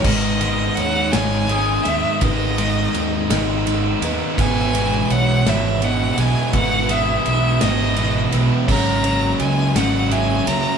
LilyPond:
<<
  \new Staff \with { instrumentName = "Violin" } { \time 6/8 \key gis \minor \tempo 4. = 56 dis''4 fis''8 gis''4 e''8 | dis''4. r4. | gis''4 fis''8 e''8 fis''8 gis''8 | fis''8 e''8 e''8 dis''4 r8 |
ais''4 gis''8 fis''8 gis''8 ais''8 | }
  \new Staff \with { instrumentName = "Vibraphone" } { \time 6/8 \key gis \minor b'4 cis''4 dis'''4 | b'8 dis''4 dis''4 b'8 | b'4 cis''4 dis''4 | b'8 dis'''4 dis''4 b'8 |
cis''4 dis''4 e''4 | }
  \new Staff \with { instrumentName = "Distorted electric guitar" } { \clef bass \time 6/8 \key gis \minor <gis, dis gis b dis'>8 <gis, dis gis b dis'>4 <gis, dis gis b dis'>8 <gis, dis gis b dis'>8 <gis, dis gis b dis'>8 | <gis, dis gis b dis'>8 <gis, dis gis b dis'>4 <gis, dis gis b dis'>8 <gis, dis gis b dis'>8 <gis, dis gis b dis'>8 | <gis, e gis b e'>8 <gis, e gis b e'>4 <gis, e gis b e'>8 <gis, e gis b e'>8 <gis, e gis b e'>8 | <gis, e gis b e'>8 <gis, e gis b e'>4 <gis, e gis b e'>8 <gis, e gis b e'>8 <gis, e gis b e'>8 |
<fis, cis fis ais cis'>8 <fis, cis fis ais cis'>4 <fis, cis fis ais cis'>8 <fis, cis fis ais cis'>8 <fis, cis fis ais cis'>8 | }
  \new Staff \with { instrumentName = "Overdriven electric guitar" } { \clef bass \time 6/8 \key gis \minor <gis, dis gis>8 <gis, dis gis>4 <gis, dis gis>8 <gis, dis gis>8 <gis, dis gis>8 | <gis, dis gis>8 <gis, dis gis>4 <gis, dis gis>8 <gis, dis gis>8 <gis, dis gis>8 | <e, b, e>8 <e, b, e>4 <e, b, e>8 <e, b, e>8 <e, b, e>8 | <e, b, e>8 <e, b, e>4 <e, b, e>8 <e, b, e>8 <e, b, e>8 |
<fis, cis fis>8 <fis, cis fis>4 <fis, cis fis>8 <fis, cis fis>8 <fis, cis fis>8 | }
  \new Staff \with { instrumentName = "Fingered electric bass" } { \clef bass \time 6/8 \key gis \minor gis,,4 dis,8 gis,,4 dis,16 r16 | gis,,4 dis,8 gis,,4 dis,16 r16 | gis,,4 b,,8 gis,,4 b,,16 r16 | gis,,4 b,,8 gis,,4 b,,16 r16 |
gis,,4 cis,8 gis,,4 cis,16 r16 | }
  \new DrumStaff \with { instrumentName = "Drums" } \drummode { \time 6/8 <cymc bd>8 cymr8 cymr8 <cymr sn>8 cymr8 cymr8 | <bd cymr>8 cymr8 cymr8 <cymr sn>8 cymr8 cymr8 | <bd cymr>8 cymr8 cymr8 <cymr sn>8 cymr8 cymr8 | <bd cymr>8 cymr8 cymr8 <cymr sn>8 cymr8 cymr8 |
<cymc bd>8 cymr8 cymr8 <cymr sn>8 cymr8 cymr8 | }
>>